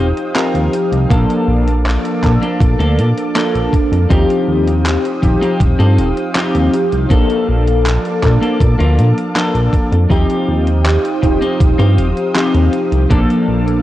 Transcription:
Already playing: analog synth bass D#1, synth keys F3 C4 D#4 G4, string machine C5 F5 G5 D#6
0.17 closed hi-hat
0.35 synth keys F3 C4 D#4 G4, clean electric guitar C4 F4 A#4, clap, closed hi-hat
0.54 analog synth bass D#2, closed hi-hat
0.73 closed hi-hat
0.92 analog synth bass C2, closed hi-hat
1.09 analog synth bass A#1, synth keys F3 A#3 D4 A4, string machine A#3 A5 D6, clean electric guitar A#3 D4 A4, kick, closed hi-hat
1.30 closed hi-hat
1.48 analog synth bass A#1
1.68 closed hi-hat
1.86 clap, closed hi-hat
2.05 closed hi-hat
2.21 analog synth bass A#2, synth keys F3 A#3 D4 A4, muted clean electric guitar stroke, kick, clap, closed hi-hat
2.42 clean electric guitar A#3 D4 A4, closed hi-hat
2.60 analog synth bass A#2, kick, closed hi-hat
2.79 analog synth bass D2, clean electric guitar A#3 D4 A4, closed hi-hat
2.98 analog synth bass A#2, closed hi-hat
3.18 closed hi-hat
3.34 synth keys F3 A#3 D4 A4, clean electric guitar A#3 D4 A4, clap, closed hi-hat
3.54 analog synth bass A#1, closed hi-hat
3.73 kick, closed hi-hat
3.92 analog synth bass F2, closed hi-hat
4.09 analog synth bass D#2, synth keys F3 C4 D#4 G4, clean electric guitar C4 F4 G4, string machine C5 F5 G5 D#6, kick, closed hi-hat
4.30 closed hi-hat
4.48 analog synth bass D#2
4.68 closed hi-hat
4.86 clap, closed hi-hat
5.05 closed hi-hat
5.22 analog synth bass D#1, synth keys F3 C4 D#4 G4, muted clean electric guitar stroke, kick, closed hi-hat
5.41 clean electric guitar C4 F4 G4, closed hi-hat
5.60 analog synth bass D#1, kick, closed hi-hat
5.79 analog synth bass G2, clean electric guitar C4 F4 A4, closed hi-hat
5.98 analog synth bass D#1, closed hi-hat
6.17 closed hi-hat
6.35 synth keys F3 C4 D#4 G4, clean electric guitar C4 F4 G4, clap, closed hi-hat
6.55 analog synth bass D#2, closed hi-hat
6.74 closed hi-hat
6.92 analog synth bass C2, closed hi-hat
7.09 analog synth bass A#1, synth keys F3 A#3 D4 A4, clean electric guitar A#3 D4 A4, string machine A#3 A5 D6, kick, closed hi-hat
7.30 closed hi-hat
7.49 analog synth bass A#1
7.68 closed hi-hat
7.86 clap, closed hi-hat
8.05 closed hi-hat
8.21 analog synth bass A#2, synth keys F3 A#3 D4 A4, muted clean electric guitar stroke, kick, clap, closed hi-hat
8.41 clean electric guitar A#3 D4 A4, closed hi-hat
8.60 analog synth bass A#2, kick, closed hi-hat
8.79 analog synth bass D2, clean electric guitar A#3 D4 F4, closed hi-hat
8.98 analog synth bass A#2, closed hi-hat
9.18 closed hi-hat
9.35 synth keys F3 A#3 D4 A4, clean electric guitar A#3 D4 A4, clap, closed hi-hat
9.55 analog synth bass A#1, closed hi-hat
9.73 kick, closed hi-hat
9.92 analog synth bass F2, closed hi-hat
10.09 analog synth bass D#2, synth keys F3 C4 D#4 G4, clean electric guitar C4 F4 G4, string machine C5 F5 G5 D#6, kick, closed hi-hat
10.30 closed hi-hat
10.48 analog synth bass D#2
10.67 closed hi-hat
10.86 clap, closed hi-hat
11.05 closed hi-hat
11.22 analog synth bass D#1, synth keys F3 C4 D#4 G4, muted clean electric guitar stroke, kick, closed hi-hat
11.41 clean electric guitar C4 F4 G4, closed hi-hat
11.60 analog synth bass D#1, kick, closed hi-hat
11.78 analog synth bass G2, clean electric guitar C4 F4 G4, closed hi-hat
11.98 analog synth bass D#1, closed hi-hat
12.17 closed hi-hat
12.35 synth keys F3 C4 D#4 G4, clean electric guitar C4 F4 G4, clap, closed hi-hat
12.55 analog synth bass D#2, closed hi-hat
12.73 closed hi-hat
12.92 analog synth bass C2, closed hi-hat
13.09 analog synth bass A#1, synth keys F3 A#3 D4 A4, clean electric guitar A#3 D4 A4, string machine A#3 A5 D6, kick, closed hi-hat
13.30 closed hi-hat
13.48 analog synth bass A#1
13.68 closed hi-hat

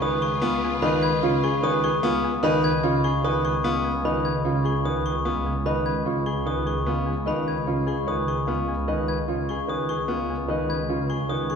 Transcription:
Already playing: double bass section C#2, string section F4 B4, harp G#4 B4 D#5 F5 C#6
0.01 grand piano D#3 B4, harp C#5, glockenspiel D#6
0.22 harp G#4, glockenspiel C#6
0.42 grand piano B3 F4, harp F5, glockenspiel D#6
0.64 harp G#5
0.82 grand piano D#3 B4, harp D#5, glockenspiel B5
1.03 harp B4, glockenspiel G#6
1.22 grand piano C#3 F4, harp C#5
1.44 harp G#4, glockenspiel C#6
1.63 grand piano D#3 B4, harp C#5, glockenspiel D#6
1.84 harp G#4, glockenspiel C#6
2.03 grand piano B3 F4, harp F5, glockenspiel D#6
2.24 harp G#5
2.43 grand piano D#3 B4, harp D#5, glockenspiel B5
2.64 harp B4, glockenspiel G#6
2.83 grand piano C#3 F4, harp C#5
3.04 harp G#4, glockenspiel C#6
3.24 grand piano D#3 B4, harp C#5, glockenspiel D#6
3.44 harp G#4, glockenspiel C#6
3.64 grand piano B3 F4, harp F5, glockenspiel D#6
3.84 harp G#5
4.05 grand piano D#3 B4, harp D#5, glockenspiel B5
4.25 harp B4, glockenspiel G#6
4.44 grand piano C#3 F4, harp C#5
4.64 harp G#4, glockenspiel C#6
4.85 grand piano D#3 B4, harp C#5, glockenspiel D#6
5.05 harp G#4, glockenspiel C#6
5.25 grand piano B3 F4, harp F5, glockenspiel D#6
5.46 harp G#5
5.66 grand piano D#3 B4, harp D#5, glockenspiel B5
5.86 harp B4, glockenspiel G#6
6.05 grand piano C#3 F4, harp C#5
6.26 harp G#4, glockenspiel C#6
6.45 grand piano D#3 B4, harp C#5, glockenspiel D#6
6.66 harp G#4, glockenspiel C#6
6.86 grand piano B3 F4, harp F5
7.06 harp G#5
7.26 grand piano D#3 B4, harp D#5, glockenspiel B5
7.46 harp B4, glockenspiel G#6
7.67 grand piano C#3 F4, harp C#5
7.87 harp G#4, glockenspiel C#6
8.07 grand piano D#3 B4, harp C#5, glockenspiel D#6
8.27 harp G#4, glockenspiel C#6
8.47 grand piano B3 F4, harp F5
8.68 harp G#5
8.88 grand piano D#3 B4, harp D#5
9.08 harp B4, glockenspiel G#6
9.28 grand piano C#3 F4, harp C#5
9.49 harp G#4, glockenspiel C#6
9.68 grand piano D#3 B4, harp C#5, glockenspiel D#6
9.89 harp G#4, glockenspiel C#6
10.08 grand piano B3 F4, harp F5
10.30 harp G#5
10.48 grand piano D#3 B4, harp D#5
10.69 harp B4, glockenspiel G#6
10.89 grand piano C#3 F4, harp C#5
11.09 harp G#4, glockenspiel C#6
11.29 grand piano D#3 B4, harp C#5, glockenspiel D#6
11.50 harp G#4, glockenspiel C#6

